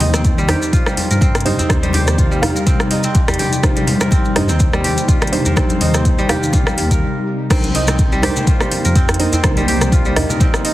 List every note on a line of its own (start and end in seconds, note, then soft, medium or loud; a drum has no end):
0.00 0.55 D#2 loud
0.00 7.47 C3 medium
0.00 7.46 G3 medium
0.00 0.14 C4 loud
0.00 0.46 D#4 medium
0.00 7.46 D#4 medium
0.00 1.45 D#4 medium
0.00 0.46 G4 medium
0.00 0.46 C5 medium
0.00 open hi-hat medium
0.00 djembe slap medium
0.00 high conga medium
0.00 djembe tone medium
0.00 low conga medium
0.14 1.21 C4 loud
0.14 cross-stick medium
0.14 closed hi-hat soft
0.14 djembe slap medium
0.14 maracas medium
0.24 kick loud
0.24 closed hi-hat medium
0.24 djembe tone medium
0.24 maracas medium
0.38 0.86 G3 loud
0.38 maracas soft
0.48 1.43 D#4 medium
0.48 1.43 G4 medium
0.48 1.91 G4 loud
0.48 1.43 C5 medium
0.48 cross-stick medium
0.48 open hi-hat medium
0.48 djembe tone medium
0.48 high conga medium
0.48 djembe bass medium
0.62 maracas medium
0.73 2.18 F4 medium
0.73 kick loud
0.73 closed hi-hat medium
0.73 djembe tone medium
0.73 maracas medium
0.86 1.82 G3 medium
0.86 cross-stick medium
0.86 maracas soft
0.96 open hi-hat medium
0.96 high conga medium
0.96 djembe tone loud
1.10 1.52 G2 loud
1.10 2.38 A#4 medium
1.10 closed hi-hat soft
1.10 maracas medium
1.21 1.58 C4 loud
1.21 kick loud
1.21 closed hi-hat medium
1.21 djembe tone medium
1.21 maracas medium
1.35 cross-stick medium
1.35 closed hi-hat soft
1.35 maracas soft
1.40 closed hi-hat medium
1.45 1.67 D#4 medium
1.45 2.90 D#4 medium
1.45 1.67 G4 medium
1.45 1.67 C5 loud
1.45 open hi-hat medium
1.45 djembe tone medium
1.45 high conga medium
1.45 low conga medium
1.59 2.66 C4 loud
1.59 closed hi-hat soft
1.59 djembe bass medium
1.59 maracas medium
1.69 2.48 D#2 loud
1.69 2.39 D#4 medium
1.69 2.39 G4 medium
1.69 2.39 C5 loud
1.69 kick loud
1.69 cross-stick medium
1.69 closed hi-hat medium
1.69 high conga medium
1.69 djembe tone medium
1.69 maracas medium
1.83 2.30 G3 loud
1.83 closed hi-hat soft
1.83 high conga medium
1.83 maracas soft
1.93 3.35 G4 loud
1.93 open hi-hat medium
1.93 djembe slap medium
1.93 high conga medium
1.93 djembe tone medium
1.93 low conga medium
2.07 cross-stick medium
2.07 closed hi-hat soft
2.07 maracas medium
2.18 3.63 F4 medium
2.18 kick loud
2.18 closed hi-hat medium
2.18 djembe tone medium
2.18 maracas medium
2.31 3.27 G3 medium
2.31 maracas soft
2.42 3.60 D#4 medium
2.42 3.60 G4 medium
2.42 3.60 F5 medium
2.42 cross-stick medium
2.42 open hi-hat medium
2.42 high conga medium
2.42 djembe tone medium
2.42 djembe bass medium
2.56 3.83 A#4 medium
2.56 maracas medium
2.66 3.04 C4 loud
2.66 kick loud
2.66 closed hi-hat medium
2.66 djembe slap medium
2.66 high conga medium
2.66 djembe tone medium
2.66 low conga medium
2.66 maracas medium
2.80 cross-stick medium
2.80 maracas soft
2.91 4.36 D#4 medium
2.91 open hi-hat medium
2.91 djembe tone medium
3.03 4.11 C4 loud
3.03 closed hi-hat soft
3.03 maracas medium
3.14 kick loud
3.14 closed hi-hat medium
3.14 djembe slap medium
3.14 djembe tone medium
3.14 maracas medium
3.28 3.75 G3 loud
3.28 cross-stick medium
3.28 closed hi-hat soft
3.28 djembe bass medium
3.28 maracas soft
3.34 closed hi-hat medium
3.39 4.80 G4 loud
3.39 open hi-hat medium
3.39 djembe tone medium
3.39 high conga medium
3.39 low conga medium
3.53 closed hi-hat soft
3.53 maracas medium
3.63 4.33 D#4 medium
3.63 5.08 F4 medium
3.63 4.33 G4 medium
3.63 4.33 C5 medium
3.63 kick loud
3.63 cross-stick medium
3.63 closed hi-hat medium
3.63 djembe tone medium
3.63 high conga medium
3.63 maracas medium
3.76 4.72 G3 medium
3.76 closed hi-hat soft
3.76 high conga medium
3.76 maracas soft
3.87 open hi-hat medium
3.87 djembe slap medium
3.87 djembe tone medium
3.87 high conga medium
3.87 low conga medium
4.01 5.28 A#4 medium
4.01 cross-stick medium
4.01 closed hi-hat soft
4.01 djembe slap medium
4.01 maracas medium
4.11 4.49 C4 loud
4.11 kick loud
4.11 closed hi-hat medium
4.11 djembe tone medium
4.11 maracas medium
4.25 maracas soft
4.36 4.51 G2 medium
4.36 5.30 D#4 medium
4.36 5.81 D#4 medium
4.36 5.30 G4 medium
4.36 5.30 C5 medium
4.36 cross-stick medium
4.36 open hi-hat medium
4.36 djembe tone medium
4.36 high conga medium
4.36 djembe bass medium
4.49 5.63 D#2 medium
4.49 5.56 C4 loud
4.49 maracas medium
4.59 kick loud
4.59 closed hi-hat medium
4.59 djembe tone medium
4.59 maracas medium
4.73 5.20 G3 loud
4.73 cross-stick medium
4.73 maracas soft
4.84 6.25 G4 loud
4.84 open hi-hat medium
4.84 high conga medium
4.84 djembe tone medium
4.98 closed hi-hat soft
4.98 maracas medium
5.08 6.53 F4 medium
5.08 kick loud
5.08 closed hi-hat medium
5.08 djembe tone medium
5.08 maracas medium
5.22 6.17 G3 medium
5.22 cross-stick medium
5.22 closed hi-hat soft
5.22 maracas soft
5.27 closed hi-hat medium
5.32 5.54 D#4 medium
5.32 5.54 G4 medium
5.32 5.54 C5 loud
5.32 open hi-hat medium
5.32 djembe tone medium
5.32 high conga medium
5.32 low conga medium
5.45 6.73 A#4 medium
5.45 closed hi-hat soft
5.45 djembe bass loud
5.45 maracas medium
5.56 5.94 C4 loud
5.56 6.27 D#4 loud
5.56 6.27 G4 medium
5.56 6.27 C5 loud
5.56 kick loud
5.56 cross-stick loud
5.56 closed hi-hat medium
5.56 high conga medium
5.56 djembe tone medium
5.56 maracas medium
5.69 closed hi-hat soft
5.69 high conga loud
5.69 maracas soft
5.80 6.35 D#2 loud
5.80 7.43 D#4 medium
5.80 open hi-hat medium
5.80 djembe slap medium
5.80 djembe tone medium
5.80 high conga medium
5.80 low conga medium
5.94 7.50 C4 loud
5.94 cross-stick medium
5.94 closed hi-hat soft
5.94 djembe slap medium
5.94 maracas medium
6.05 kick loud
6.05 closed hi-hat medium
6.05 djembe tone medium
6.05 maracas medium
6.18 6.66 G3 loud
6.18 maracas soft
6.29 7.02 D#4 medium
6.29 7.70 G4 loud
6.29 7.02 G4 medium
6.29 7.02 F5 medium
6.29 cross-stick medium
6.29 open hi-hat medium
6.29 djembe tone medium
6.29 high conga medium
6.29 djembe bass medium
6.43 7.02 D#2 medium
6.43 maracas medium
6.52 8.05 F4 medium
6.52 kick loud
6.52 closed hi-hat medium
6.52 djembe slap medium
6.52 high conga medium
6.52 djembe tone medium
6.52 low conga medium
6.52 maracas medium
6.67 7.55 G3 medium
6.67 cross-stick medium
6.67 maracas soft
6.77 open hi-hat loud
6.77 djembe tone medium
6.91 8.18 A#4 medium
6.91 kick medium
6.91 closed hi-hat soft
6.91 maracas medium
7.50 8.29 C2 loud
7.50 10.74 C3 medium
7.50 10.74 A#3 medium
7.50 7.88 C4 loud
7.50 10.74 D#4 medium
7.50 8.20 D#4 medium
7.50 8.20 A#4 medium
7.50 8.20 C5 medium
7.50 kick loud
7.50 cross-stick medium
7.50 closed hi-hat medium
7.50 crash loud
7.50 high conga medium
7.50 low conga medium
7.50 maracas medium
7.64 closed hi-hat soft
7.64 high conga loud
7.64 maracas soft
7.73 9.20 D#4 medium
7.73 open hi-hat medium
7.73 djembe slap medium
7.73 high conga medium
7.87 8.95 C4 loud
7.87 cross-stick medium
7.87 closed hi-hat soft
7.87 djembe slap medium
7.87 djembe tone medium
7.87 low conga medium
7.87 maracas medium
7.98 kick loud
7.98 closed hi-hat medium
7.98 maracas medium
8.12 8.60 G3 loud
8.12 maracas soft
8.22 9.17 D#4 medium
8.22 9.64 G4 loud
8.22 9.17 A#4 medium
8.22 9.17 C5 loud
8.22 cross-stick medium
8.22 open hi-hat medium
8.22 djembe tone medium
8.22 high conga medium
8.22 djembe bass medium
8.36 low conga loud
8.36 maracas medium
8.47 9.92 F4 medium
8.47 kick loud
8.47 closed hi-hat medium
8.47 maracas medium
8.60 9.56 G3 medium
8.60 cross-stick medium
8.60 maracas soft
8.71 open hi-hat medium
8.71 djembe tone medium
8.71 high conga medium
8.85 9.26 F2 loud
8.85 10.12 A#4 medium
8.85 closed hi-hat soft
8.85 maracas medium
8.95 9.33 C4 loud
8.95 kick loud
8.95 closed hi-hat medium
8.95 maracas medium
9.08 cross-stick medium
9.08 closed hi-hat soft
9.08 djembe tone loud
9.08 maracas soft
9.14 closed hi-hat medium
9.19 9.41 D#4 medium
9.19 10.64 D#4 medium
9.19 9.41 A#4 medium
9.19 9.41 C5 medium
9.19 open hi-hat loud
9.19 high conga medium
9.32 10.40 C4 loud
9.32 closed hi-hat soft
9.32 djembe bass loud
9.32 maracas medium
9.44 10.22 C2 loud
9.44 10.14 D#4 medium
9.44 10.14 A#4 medium
9.44 10.14 C5 loud
9.44 kick loud
9.44 cross-stick loud
9.44 closed hi-hat medium
9.44 high conga loud
9.44 low conga medium
9.44 maracas medium
9.57 10.05 G3 loud
9.57 closed hi-hat soft
9.57 high conga loud
9.57 djembe tone medium
9.57 maracas soft
9.67 10.74 G4 loud
9.67 open hi-hat loud
9.67 djembe slap medium
9.67 high conga medium
9.81 cross-stick medium
9.81 closed hi-hat soft
9.81 low conga medium
9.81 maracas medium
9.92 10.74 F4 medium
9.92 kick loud
9.92 closed hi-hat medium
9.92 djembe tone loud
9.92 maracas medium
10.05 10.74 G3 medium
10.05 maracas soft
10.16 10.74 D#4 medium
10.16 10.74 A#4 medium
10.16 10.74 D#5 medium
10.16 cross-stick medium
10.16 open hi-hat medium
10.16 high conga medium
10.16 djembe bass loud
10.29 10.74 A#4 medium
10.29 low conga loud
10.29 maracas medium
10.40 10.74 C4 loud
10.40 kick loud
10.40 closed hi-hat medium
10.40 djembe slap medium
10.40 high conga medium
10.40 djembe tone medium
10.40 maracas medium
10.54 cross-stick medium
10.54 maracas soft
10.65 10.74 D#4 medium
10.65 open hi-hat medium